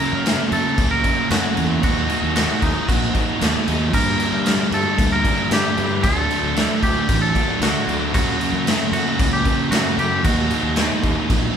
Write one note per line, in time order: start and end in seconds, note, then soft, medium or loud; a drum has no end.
0.00 0.22 F#2 medium
0.00 0.24 C#3 loud
0.00 0.25 F#3 loud
0.00 0.25 F#3 medium
0.00 0.26 A#3 loud
0.00 0.27 A#3 medium
0.00 0.25 C#4 loud
0.00 0.26 C#4 medium
0.00 0.53 A#4 loud
0.12 0.35 F#2 medium
0.23 1.03 F#2 loud
0.23 0.77 C#3 loud
0.23 0.78 F#3 loud
0.23 0.79 A#3 loud
0.23 0.79 C#4 loud
0.23 snare loud
0.23 crash medium
0.51 0.63 F#2 loud
0.51 0.91 A4 loud
0.51 crash medium
0.78 1.01 C#2 loud
0.78 1.29 C#3 medium
0.78 1.05 F#3 medium
0.78 1.05 A#3 medium
0.78 1.02 C#4 loud
0.78 kick loud
0.78 crash medium
0.91 1.31 A#4 loud
1.04 1.30 F#3 medium
1.04 1.32 A#3 medium
1.04 1.31 C#4 medium
1.04 kick medium
1.04 crash medium
1.29 1.81 F#2 medium
1.29 1.42 F#2 loud
1.29 1.81 C#3 medium
1.29 1.58 F#3 medium
1.29 1.58 A#3 medium
1.29 1.55 C#4 loud
1.29 1.83 F#4 loud
1.29 snare loud
1.29 crash medium
1.56 1.83 E2 medium
1.56 1.83 F#3 medium
1.56 1.85 A#3 medium
1.56 1.81 C#4 medium
1.56 crash medium
1.83 2.06 D#2 medium
1.83 2.34 D#3 loud
1.83 2.35 F#3 loud
1.83 2.37 A#3 loud
1.83 2.36 D#4 loud
1.83 2.32 F#4 loud
1.83 kick loud
1.83 crash medium
2.07 2.34 F#3 medium
2.07 2.36 A#3 medium
2.07 2.35 D#4 medium
2.07 crash medium
2.22 2.45 D#2 medium
2.35 2.87 D#3 loud
2.35 2.88 F#3 loud
2.35 2.88 A#3 loud
2.35 2.89 D#4 loud
2.35 2.63 F#4 loud
2.35 snare loud
2.35 crash medium
2.62 2.73 D#2 medium
2.62 2.87 D#4 medium
2.62 kick medium
2.62 crash medium
2.88 3.11 A#1 loud
2.88 3.39 D#3 medium
2.88 3.16 F#3 medium
2.88 3.14 A#3 medium
2.88 3.13 D#4 medium
2.88 3.63 F#4 medium
2.88 kick loud
2.88 crash loud
3.14 3.40 F#3 medium
3.14 3.41 A#3 medium
3.14 3.42 D#4 medium
3.14 kick medium
3.14 crash medium
3.40 3.52 D#2 medium
3.40 3.91 D#3 medium
3.40 3.69 F#3 medium
3.40 3.67 A#3 medium
3.40 3.65 D#4 medium
3.40 snare loud
3.40 crash medium
3.67 3.93 D#2 loud
3.67 3.93 F#3 medium
3.67 3.92 A#3 medium
3.67 3.92 D#4 medium
3.67 crash medium
3.93 4.16 G2 medium
3.93 4.44 G2 loud
3.93 4.45 D3 loud
3.93 4.46 G3 loud
3.93 4.46 A#3 loud
3.93 4.48 D4 loud
3.93 4.69 A#4 loud
3.93 kick loud
3.93 crash loud
4.19 4.45 G3 medium
4.19 4.47 A#3 medium
4.19 4.48 D4 medium
4.19 crash medium
4.32 4.55 G2 medium
4.45 5.24 G2 loud
4.45 4.96 D3 loud
4.45 4.98 G3 loud
4.45 4.98 A#3 loud
4.45 4.99 D4 loud
4.45 snare loud
4.45 crash loud
4.71 4.83 G2 medium
4.71 5.10 A4 loud
4.71 crash medium
4.97 5.21 D2 loud
4.97 5.49 D3 medium
4.97 5.26 G3 medium
4.97 5.25 A#3 medium
4.97 5.23 D4 medium
4.97 kick loud
4.97 crash medium
5.12 5.52 A#4 loud
5.24 5.51 G3 medium
5.24 5.52 A#3 medium
5.24 5.52 D4 medium
5.24 kick medium
5.24 crash medium
5.49 6.01 G2 loud
5.49 5.62 G2 loud
5.49 6.02 D3 medium
5.49 5.79 G3 medium
5.49 5.77 A#3 medium
5.49 6.03 G4 loud
5.49 snare loud
5.49 crash medium
5.53 5.76 D4 medium
5.77 6.05 G2 loud
5.77 6.03 G3 medium
5.77 6.03 A#3 medium
5.77 6.02 D4 medium
5.77 crash medium
6.03 6.26 D2 loud
6.03 6.54 D3 medium
6.03 6.56 F#3 loud
6.03 6.56 A3 loud
6.03 6.57 D4 loud
6.03 6.83 A4 loud
6.03 kick loud
6.03 crash medium
6.28 6.56 F#3 medium
6.28 6.56 A3 medium
6.28 6.57 D4 medium
6.28 crash medium
6.43 6.66 D2 medium
6.56 7.06 D3 loud
6.56 7.09 F#3 loud
6.56 7.08 A3 loud
6.56 7.09 D4 loud
6.56 snare loud
6.56 crash medium
6.82 6.94 D2 loud
6.82 7.19 G4 medium
6.82 kick medium
6.82 crash medium
7.07 7.31 A1 loud
7.07 7.60 D3 medium
7.07 7.37 F#3 medium
7.07 7.34 A3 medium
7.07 7.33 D4 medium
7.07 kick loud
7.07 crash medium
7.22 7.62 A4 loud
7.34 7.61 F#3 medium
7.34 7.61 A3 medium
7.34 7.62 D4 medium
7.34 kick medium
7.34 crash medium
7.60 7.72 D2 medium
7.60 8.12 D3 medium
7.60 7.89 F#3 medium
7.60 7.87 A3 medium
7.60 7.86 D4 medium
7.60 8.13 F#4 loud
7.60 snare loud
7.60 crash loud
7.87 8.14 D2 loud
7.87 8.15 F#3 medium
7.87 8.13 A3 medium
7.87 8.12 D4 medium
7.87 crash medium
8.14 8.64 F#2 loud
8.14 8.37 F#2 loud
8.14 8.65 C#3 loud
8.14 8.67 F#3 loud
8.14 8.67 A#3 loud
8.14 8.67 C#4 loud
8.14 8.92 F#4 loud
8.14 kick loud
8.14 crash medium
8.40 8.68 F#3 medium
8.40 8.68 A#3 medium
8.40 8.69 C#4 medium
8.40 crash medium
8.52 8.75 F#2 loud
8.65 9.45 F#2 loud
8.65 9.17 C#3 loud
8.65 9.18 F#3 loud
8.65 9.19 A#3 loud
8.65 9.20 C#4 loud
8.65 snare loud
8.65 crash loud
8.92 9.03 F#2 loud
8.92 9.33 F#4 loud
8.92 crash medium
9.18 9.42 C#2 loud
9.18 9.70 C#3 medium
9.18 9.47 F#3 medium
9.18 9.46 A#3 medium
9.18 9.44 C#4 medium
9.18 kick loud
9.18 crash loud
9.33 9.71 G4 medium
9.45 9.72 F#3 medium
9.45 9.73 A#3 medium
9.45 9.73 C#4 medium
9.45 kick medium
9.45 crash medium
9.71 9.82 F#2 loud
9.71 10.22 F#2 loud
9.71 10.23 C#3 medium
9.71 10.00 F#3 medium
9.71 9.99 A#3 loud
9.71 9.97 C#4 medium
9.71 9.98 F#4 loud
9.71 snare loud
9.71 crash loud
9.97 10.25 F#2 loud
9.97 10.23 F#3 medium
9.97 10.26 A#3 medium
9.97 10.22 C#4 medium
9.97 10.24 G4 medium
9.97 crash medium
10.24 10.47 D#2 loud
10.24 10.75 D#3 loud
10.24 10.76 F#3 medium
10.24 10.77 A#3 loud
10.24 10.77 D#4 loud
10.24 11.57 F#4 medium
10.24 kick loud
10.24 crash medium
10.50 10.77 F#3 medium
10.50 10.78 A#3 medium
10.50 10.79 D#4 medium
10.50 crash medium
10.63 10.86 D#2 medium
10.76 11.27 D#3 loud
10.76 11.29 F#3 loud
10.76 11.29 A#3 loud
10.76 11.31 D#4 loud
10.76 snare loud
10.76 crash medium
11.03 11.15 D#2 medium
11.03 kick medium
11.03 crash medium
11.29 11.52 A#1 loud
11.29 11.57 D#3 medium
11.29 11.57 F#3 medium
11.29 11.56 A#3 medium
11.29 11.54 D#4 medium
11.29 kick loud
11.29 crash medium